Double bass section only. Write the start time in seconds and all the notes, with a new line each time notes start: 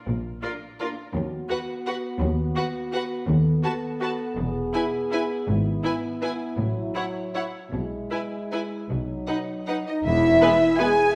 0.07 A#1
1.15 D#2
2.22 D#2
3.28 D#2
4.37 E1
5.48 G#1
6.59 A1
7.73 B1
8.90 B1
10.05 E1